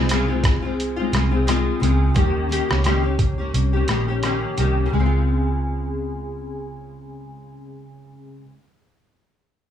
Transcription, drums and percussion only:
0, 0, Header, 1, 2, 480
1, 0, Start_track
1, 0, Tempo, 690449
1, 1498, Time_signature, 4, 2, 24, 8
1, 6746, End_track
2, 0, Start_track
2, 0, Title_t, "Drums"
2, 64, Note_on_c, 9, 42, 67
2, 79, Note_on_c, 9, 37, 79
2, 133, Note_off_c, 9, 42, 0
2, 149, Note_off_c, 9, 37, 0
2, 302, Note_on_c, 9, 36, 82
2, 303, Note_on_c, 9, 42, 63
2, 314, Note_on_c, 9, 37, 91
2, 372, Note_off_c, 9, 36, 0
2, 373, Note_off_c, 9, 42, 0
2, 383, Note_off_c, 9, 37, 0
2, 555, Note_on_c, 9, 42, 54
2, 625, Note_off_c, 9, 42, 0
2, 788, Note_on_c, 9, 42, 54
2, 797, Note_on_c, 9, 37, 80
2, 858, Note_off_c, 9, 42, 0
2, 866, Note_off_c, 9, 37, 0
2, 1029, Note_on_c, 9, 42, 68
2, 1035, Note_on_c, 9, 37, 64
2, 1099, Note_off_c, 9, 42, 0
2, 1105, Note_off_c, 9, 37, 0
2, 1273, Note_on_c, 9, 42, 46
2, 1342, Note_off_c, 9, 42, 0
2, 1500, Note_on_c, 9, 42, 70
2, 1502, Note_on_c, 9, 36, 91
2, 1569, Note_off_c, 9, 42, 0
2, 1571, Note_off_c, 9, 36, 0
2, 1753, Note_on_c, 9, 42, 58
2, 1823, Note_off_c, 9, 42, 0
2, 1882, Note_on_c, 9, 37, 82
2, 1951, Note_off_c, 9, 37, 0
2, 1976, Note_on_c, 9, 42, 56
2, 1991, Note_on_c, 9, 37, 74
2, 2045, Note_off_c, 9, 42, 0
2, 2061, Note_off_c, 9, 37, 0
2, 2217, Note_on_c, 9, 36, 80
2, 2217, Note_on_c, 9, 42, 59
2, 2287, Note_off_c, 9, 36, 0
2, 2287, Note_off_c, 9, 42, 0
2, 2464, Note_on_c, 9, 42, 51
2, 2533, Note_off_c, 9, 42, 0
2, 2696, Note_on_c, 9, 42, 52
2, 2705, Note_on_c, 9, 37, 79
2, 2766, Note_off_c, 9, 42, 0
2, 2774, Note_off_c, 9, 37, 0
2, 2939, Note_on_c, 9, 42, 58
2, 2945, Note_on_c, 9, 37, 61
2, 3008, Note_off_c, 9, 42, 0
2, 3014, Note_off_c, 9, 37, 0
2, 3181, Note_on_c, 9, 42, 47
2, 3251, Note_off_c, 9, 42, 0
2, 6746, End_track
0, 0, End_of_file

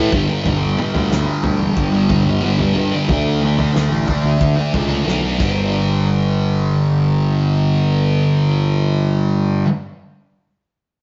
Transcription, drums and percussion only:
0, 0, Header, 1, 2, 480
1, 0, Start_track
1, 0, Tempo, 660793
1, 326, Time_signature, 4, 2, 24, 8
1, 8006, End_track
2, 0, Start_track
2, 0, Title_t, "Drums"
2, 90, Note_on_c, 9, 36, 100
2, 163, Note_off_c, 9, 36, 0
2, 332, Note_on_c, 9, 43, 81
2, 404, Note_off_c, 9, 43, 0
2, 571, Note_on_c, 9, 47, 75
2, 643, Note_off_c, 9, 47, 0
2, 688, Note_on_c, 9, 43, 80
2, 761, Note_off_c, 9, 43, 0
2, 811, Note_on_c, 9, 38, 69
2, 884, Note_off_c, 9, 38, 0
2, 1044, Note_on_c, 9, 43, 75
2, 1117, Note_off_c, 9, 43, 0
2, 1284, Note_on_c, 9, 36, 99
2, 1357, Note_off_c, 9, 36, 0
2, 1524, Note_on_c, 9, 36, 73
2, 1527, Note_on_c, 9, 43, 84
2, 1597, Note_off_c, 9, 36, 0
2, 1599, Note_off_c, 9, 43, 0
2, 1883, Note_on_c, 9, 43, 71
2, 1956, Note_off_c, 9, 43, 0
2, 2244, Note_on_c, 9, 36, 104
2, 2247, Note_on_c, 9, 43, 79
2, 2316, Note_off_c, 9, 36, 0
2, 2320, Note_off_c, 9, 43, 0
2, 2605, Note_on_c, 9, 43, 74
2, 2678, Note_off_c, 9, 43, 0
2, 2730, Note_on_c, 9, 38, 75
2, 2802, Note_off_c, 9, 38, 0
2, 2963, Note_on_c, 9, 36, 72
2, 2966, Note_on_c, 9, 43, 73
2, 3036, Note_off_c, 9, 36, 0
2, 3039, Note_off_c, 9, 43, 0
2, 3203, Note_on_c, 9, 36, 96
2, 3276, Note_off_c, 9, 36, 0
2, 3443, Note_on_c, 9, 36, 59
2, 3443, Note_on_c, 9, 43, 82
2, 3515, Note_off_c, 9, 36, 0
2, 3516, Note_off_c, 9, 43, 0
2, 3692, Note_on_c, 9, 38, 48
2, 3765, Note_off_c, 9, 38, 0
2, 3923, Note_on_c, 9, 36, 108
2, 3924, Note_on_c, 9, 49, 80
2, 3996, Note_off_c, 9, 36, 0
2, 3996, Note_off_c, 9, 49, 0
2, 8006, End_track
0, 0, End_of_file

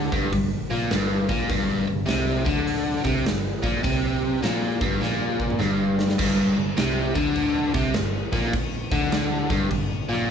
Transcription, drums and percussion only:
0, 0, Header, 1, 2, 480
1, 0, Start_track
1, 0, Tempo, 586510
1, 1226, Time_signature, 4, 2, 24, 8
1, 8434, End_track
2, 0, Start_track
2, 0, Title_t, "Drums"
2, 100, Note_on_c, 9, 36, 95
2, 182, Note_off_c, 9, 36, 0
2, 267, Note_on_c, 9, 36, 92
2, 269, Note_on_c, 9, 46, 59
2, 349, Note_off_c, 9, 36, 0
2, 351, Note_off_c, 9, 46, 0
2, 741, Note_on_c, 9, 46, 53
2, 746, Note_on_c, 9, 38, 106
2, 823, Note_off_c, 9, 46, 0
2, 828, Note_off_c, 9, 38, 0
2, 1057, Note_on_c, 9, 36, 97
2, 1139, Note_off_c, 9, 36, 0
2, 1224, Note_on_c, 9, 36, 108
2, 1226, Note_on_c, 9, 46, 53
2, 1306, Note_off_c, 9, 36, 0
2, 1308, Note_off_c, 9, 46, 0
2, 1703, Note_on_c, 9, 46, 58
2, 1708, Note_on_c, 9, 38, 109
2, 1785, Note_off_c, 9, 46, 0
2, 1790, Note_off_c, 9, 38, 0
2, 2015, Note_on_c, 9, 36, 108
2, 2097, Note_off_c, 9, 36, 0
2, 2188, Note_on_c, 9, 46, 60
2, 2270, Note_off_c, 9, 46, 0
2, 2494, Note_on_c, 9, 36, 100
2, 2576, Note_off_c, 9, 36, 0
2, 2667, Note_on_c, 9, 46, 59
2, 2672, Note_on_c, 9, 38, 114
2, 2749, Note_off_c, 9, 46, 0
2, 2754, Note_off_c, 9, 38, 0
2, 2975, Note_on_c, 9, 36, 99
2, 3057, Note_off_c, 9, 36, 0
2, 3145, Note_on_c, 9, 36, 115
2, 3148, Note_on_c, 9, 46, 61
2, 3226, Note_off_c, 9, 36, 0
2, 3229, Note_off_c, 9, 46, 0
2, 3627, Note_on_c, 9, 46, 60
2, 3632, Note_on_c, 9, 38, 107
2, 3709, Note_off_c, 9, 46, 0
2, 3714, Note_off_c, 9, 38, 0
2, 3938, Note_on_c, 9, 36, 105
2, 4020, Note_off_c, 9, 36, 0
2, 4112, Note_on_c, 9, 38, 65
2, 4194, Note_off_c, 9, 38, 0
2, 4417, Note_on_c, 9, 36, 75
2, 4499, Note_off_c, 9, 36, 0
2, 4503, Note_on_c, 9, 47, 68
2, 4585, Note_off_c, 9, 47, 0
2, 4586, Note_on_c, 9, 38, 83
2, 4668, Note_off_c, 9, 38, 0
2, 4902, Note_on_c, 9, 38, 99
2, 4984, Note_off_c, 9, 38, 0
2, 4985, Note_on_c, 9, 38, 82
2, 5064, Note_on_c, 9, 49, 118
2, 5064, Note_on_c, 9, 57, 65
2, 5067, Note_off_c, 9, 38, 0
2, 5067, Note_on_c, 9, 36, 106
2, 5146, Note_off_c, 9, 49, 0
2, 5146, Note_off_c, 9, 57, 0
2, 5149, Note_off_c, 9, 36, 0
2, 5543, Note_on_c, 9, 57, 63
2, 5548, Note_on_c, 9, 38, 115
2, 5625, Note_off_c, 9, 57, 0
2, 5630, Note_off_c, 9, 38, 0
2, 5856, Note_on_c, 9, 36, 113
2, 5938, Note_off_c, 9, 36, 0
2, 6020, Note_on_c, 9, 57, 67
2, 6102, Note_off_c, 9, 57, 0
2, 6337, Note_on_c, 9, 36, 110
2, 6419, Note_off_c, 9, 36, 0
2, 6497, Note_on_c, 9, 57, 67
2, 6502, Note_on_c, 9, 38, 114
2, 6579, Note_off_c, 9, 57, 0
2, 6583, Note_off_c, 9, 38, 0
2, 6814, Note_on_c, 9, 36, 103
2, 6896, Note_off_c, 9, 36, 0
2, 6984, Note_on_c, 9, 36, 111
2, 6984, Note_on_c, 9, 57, 70
2, 7066, Note_off_c, 9, 36, 0
2, 7066, Note_off_c, 9, 57, 0
2, 7296, Note_on_c, 9, 36, 102
2, 7378, Note_off_c, 9, 36, 0
2, 7463, Note_on_c, 9, 57, 58
2, 7467, Note_on_c, 9, 38, 119
2, 7544, Note_off_c, 9, 57, 0
2, 7549, Note_off_c, 9, 38, 0
2, 7775, Note_on_c, 9, 36, 108
2, 7857, Note_off_c, 9, 36, 0
2, 7945, Note_on_c, 9, 36, 89
2, 7947, Note_on_c, 9, 57, 65
2, 8026, Note_off_c, 9, 36, 0
2, 8029, Note_off_c, 9, 57, 0
2, 8434, End_track
0, 0, End_of_file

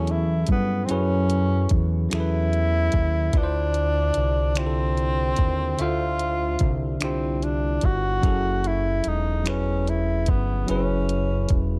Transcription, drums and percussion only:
0, 0, Header, 1, 2, 480
1, 0, Start_track
1, 0, Tempo, 816327
1, 522, Time_signature, 6, 3, 24, 8
1, 6934, End_track
2, 0, Start_track
2, 0, Title_t, "Drums"
2, 43, Note_on_c, 9, 42, 35
2, 102, Note_off_c, 9, 42, 0
2, 274, Note_on_c, 9, 42, 54
2, 286, Note_on_c, 9, 36, 70
2, 332, Note_off_c, 9, 42, 0
2, 345, Note_off_c, 9, 36, 0
2, 521, Note_on_c, 9, 42, 70
2, 580, Note_off_c, 9, 42, 0
2, 762, Note_on_c, 9, 42, 46
2, 821, Note_off_c, 9, 42, 0
2, 996, Note_on_c, 9, 42, 61
2, 1006, Note_on_c, 9, 36, 74
2, 1055, Note_off_c, 9, 42, 0
2, 1065, Note_off_c, 9, 36, 0
2, 1242, Note_on_c, 9, 42, 61
2, 1251, Note_on_c, 9, 26, 107
2, 1301, Note_off_c, 9, 42, 0
2, 1310, Note_off_c, 9, 26, 0
2, 1488, Note_on_c, 9, 42, 35
2, 1547, Note_off_c, 9, 42, 0
2, 1717, Note_on_c, 9, 42, 53
2, 1728, Note_on_c, 9, 36, 79
2, 1775, Note_off_c, 9, 42, 0
2, 1786, Note_off_c, 9, 36, 0
2, 1959, Note_on_c, 9, 42, 69
2, 1961, Note_on_c, 9, 36, 100
2, 2017, Note_off_c, 9, 42, 0
2, 2020, Note_off_c, 9, 36, 0
2, 2200, Note_on_c, 9, 42, 47
2, 2259, Note_off_c, 9, 42, 0
2, 2434, Note_on_c, 9, 42, 63
2, 2493, Note_off_c, 9, 42, 0
2, 2678, Note_on_c, 9, 42, 66
2, 2687, Note_on_c, 9, 26, 92
2, 2737, Note_off_c, 9, 42, 0
2, 2746, Note_off_c, 9, 26, 0
2, 2925, Note_on_c, 9, 42, 35
2, 2983, Note_off_c, 9, 42, 0
2, 3154, Note_on_c, 9, 42, 56
2, 3167, Note_on_c, 9, 36, 73
2, 3213, Note_off_c, 9, 42, 0
2, 3226, Note_off_c, 9, 36, 0
2, 3402, Note_on_c, 9, 42, 68
2, 3461, Note_off_c, 9, 42, 0
2, 3642, Note_on_c, 9, 42, 44
2, 3701, Note_off_c, 9, 42, 0
2, 3875, Note_on_c, 9, 42, 63
2, 3886, Note_on_c, 9, 36, 78
2, 3933, Note_off_c, 9, 42, 0
2, 3945, Note_off_c, 9, 36, 0
2, 4119, Note_on_c, 9, 42, 61
2, 4128, Note_on_c, 9, 26, 107
2, 4178, Note_off_c, 9, 42, 0
2, 4187, Note_off_c, 9, 26, 0
2, 4366, Note_on_c, 9, 42, 35
2, 4425, Note_off_c, 9, 42, 0
2, 4595, Note_on_c, 9, 42, 61
2, 4607, Note_on_c, 9, 36, 70
2, 4653, Note_off_c, 9, 42, 0
2, 4666, Note_off_c, 9, 36, 0
2, 4841, Note_on_c, 9, 36, 109
2, 4841, Note_on_c, 9, 42, 64
2, 4900, Note_off_c, 9, 36, 0
2, 4900, Note_off_c, 9, 42, 0
2, 5082, Note_on_c, 9, 42, 47
2, 5141, Note_off_c, 9, 42, 0
2, 5315, Note_on_c, 9, 42, 60
2, 5373, Note_off_c, 9, 42, 0
2, 5561, Note_on_c, 9, 42, 64
2, 5569, Note_on_c, 9, 26, 103
2, 5619, Note_off_c, 9, 42, 0
2, 5628, Note_off_c, 9, 26, 0
2, 5806, Note_on_c, 9, 42, 33
2, 5865, Note_off_c, 9, 42, 0
2, 6034, Note_on_c, 9, 42, 58
2, 6046, Note_on_c, 9, 36, 68
2, 6093, Note_off_c, 9, 42, 0
2, 6105, Note_off_c, 9, 36, 0
2, 6281, Note_on_c, 9, 42, 67
2, 6340, Note_off_c, 9, 42, 0
2, 6521, Note_on_c, 9, 42, 45
2, 6580, Note_off_c, 9, 42, 0
2, 6754, Note_on_c, 9, 42, 63
2, 6764, Note_on_c, 9, 36, 77
2, 6812, Note_off_c, 9, 42, 0
2, 6823, Note_off_c, 9, 36, 0
2, 6934, End_track
0, 0, End_of_file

